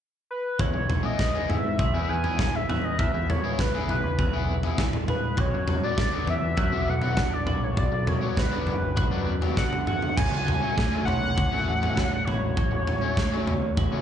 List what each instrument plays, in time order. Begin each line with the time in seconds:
0.31 analog synth lead B4 F#6
0.59 picked electric bass E2, clean electric guitar E3, analog synth lead C#5 G#6, kick, floor tom
0.74 picked electric bass B1, muted overdriven electric guitar stroke
0.90 clean electric guitar E3, floor tom, mid tom
1.03 overdriven electric guitar E3 B3 E4 G#4, analog synth lead D#5 A#6
1.19 clean electric guitar B3, muted overdriven electric guitar stroke, kick, snare
1.35 overdriven electric guitar E3 B3 E4 G#4
1.49 picked electric bass G#2, clean electric guitar E4, analog synth lead E5 B6, floor tom
1.64 picked electric bass G#2
1.79 picked electric bass B1, clean electric guitar G#4, muted overdriven electric guitar stroke, kick, floor tom
1.94 picked electric bass E2, overdriven electric guitar E3 B3 E4 G#4
2.09 picked electric bass E2, clean electric guitar B3, analog synth lead G#5 D#7
2.24 overdriven electric guitar E3 B3 E4 G#4, floor tom
2.39 clean electric guitar E4, kick, snare, mid tom
2.55 analog synth lead E5 B6, muted overdriven electric guitar stroke
2.69 picked electric bass E2, clean electric guitar G#4, floor tom, mid tom
2.84 analog synth lead D#5 A#6
2.98 picked electric bass E2, clean electric guitar E3, analog synth lead E5 B6, kick, floor tom
3.13 picked electric bass E2, muted overdriven electric guitar stroke
3.29 clean electric guitar E3, analog synth lead C#5 G#6, floor tom, mid tom
3.44 overdriven electric guitar E3 B3 E4 G#4
3.59 clean electric guitar B3, analog synth lead B4 F#6, muted overdriven electric guitar stroke, kick, snare
3.75 overdriven electric guitar E3 B3 E4 G#4
3.88 picked electric bass B1, clean electric guitar E4, analog synth lead B4 F#6, floor tom
4.03 picked electric bass C#2
4.19 picked electric bass E2, clean electric guitar G#4, muted overdriven electric guitar stroke, kick, floor tom
4.32 picked electric bass B1, overdriven electric guitar E3 B3 E4 G#4
4.49 clean electric guitar B3
4.63 overdriven electric guitar E3 B3 E4 G#4, floor tom
4.78 clean electric guitar E4, kick, snare, mid tom
4.93 muted overdriven electric guitar stroke, mid tom
5.08 clean electric guitar G#4, analog synth lead B4 F#6, floor tom, mid tom
5.37 picked electric bass B1, clean electric guitar F#3, analog synth lead C#5 G#6, kick, floor tom
5.53 picked electric bass F#2, muted overdriven electric guitar stroke
5.67 clean electric guitar F#3, floor tom, mid tom
5.84 overdriven electric guitar F#3 B3 D4, analog synth lead D5 A6
5.98 clean electric guitar B3, muted overdriven electric guitar stroke, kick, snare
6.12 overdriven electric guitar F#3 B3 D4
6.27 picked electric bass E2, clean electric guitar D4, analog synth lead E5 B6, floor tom
6.42 picked electric bass E2
6.57 picked electric bass F#2, clean electric guitar F#4, muted overdriven electric guitar stroke, kick, floor tom
6.71 picked electric bass B1, overdriven electric guitar F#3 B3 D4
6.87 picked electric bass B1, clean electric guitar B3, analog synth lead F#5 C#7
7.02 overdriven electric guitar F#3 B3 D4, floor tom
7.17 clean electric guitar D4, kick, snare, mid tom
7.33 analog synth lead D5 A6, muted overdriven electric guitar stroke
7.46 picked electric bass B1, clean electric guitar F#4, floor tom, mid tom
7.64 analog synth lead C#5 G#6
7.77 picked electric bass B1, clean electric guitar F#3, analog synth lead D5 A6, kick, floor tom
7.91 picked electric bass B1, muted overdriven electric guitar stroke
8.07 clean electric guitar F#3, analog synth lead C#5 G#6, floor tom, mid tom
8.21 overdriven electric guitar F#3 B3 D4
8.36 clean electric guitar B3, analog synth lead B4 F#6, muted overdriven electric guitar stroke, kick, snare
8.51 overdriven electric guitar F#3 B3 D4
8.66 picked electric bass F#2, clean electric guitar D4, analog synth lead B4 F#6, floor tom
8.82 picked electric bass G#1
8.96 picked electric bass B1, clean electric guitar F#4, muted overdriven electric guitar stroke, kick, floor tom
9.11 picked electric bass F#2, overdriven electric guitar F#3 B3 D4
9.26 clean electric guitar B3
9.42 overdriven electric guitar F#3 B3 D4, floor tom
9.56 clean electric guitar D4, analog synth lead F#5 C#7, kick, snare
9.71 muted overdriven electric guitar stroke, high tom
9.87 clean electric guitar F#4, analog synth lead F#5 C#7, mid tom
10.02 floor tom
10.16 picked electric bass A1, clean electric guitar F#3, analog synth lead G#5 D#7, kick, floor tom, crash
10.31 picked electric bass C#2, muted overdriven electric guitar stroke
10.46 clean electric guitar F#3, floor tom, mid tom
10.62 overdriven electric guitar F#3 A3 C#4
10.76 clean electric guitar A3, muted overdriven electric guitar stroke, kick, snare
10.91 overdriven electric guitar F#3 A3 C#4
11.05 picked electric bass B1, clean electric guitar C#4, analog synth lead F#5 C#7, floor tom
11.21 picked electric bass B1
11.36 picked electric bass C#2, clean electric guitar F#4, muted overdriven electric guitar stroke, kick, floor tom
11.51 picked electric bass A1, overdriven electric guitar F#3 A3 C#4
11.67 picked electric bass A1, clean electric guitar A3
11.82 overdriven electric guitar F#3 A3 C#4, floor tom
11.97 clean electric guitar C#4, kick, snare, mid tom
12.12 muted overdriven electric guitar stroke
12.25 picked electric bass A1, clean electric guitar F#4, analog synth lead C#5 G#6, floor tom, mid tom
12.57 picked electric bass A1, clean electric guitar F#3, kick, floor tom
12.71 picked electric bass A1, muted overdriven electric guitar stroke
12.87 clean electric guitar F#3, floor tom, mid tom
13.01 overdriven electric guitar F#3 A3 C#4
13.17 clean electric guitar A3, muted overdriven electric guitar stroke, kick, snare
13.32 overdriven electric guitar F#3 A3 C#4
13.47 picked electric bass C#2, clean electric guitar C#4, floor tom
13.61 picked electric bass D#2
13.77 picked electric bass A1, clean electric guitar F#4, muted overdriven electric guitar stroke, kick, floor tom
13.91 picked electric bass C#2, overdriven electric guitar F#3 A3 C#4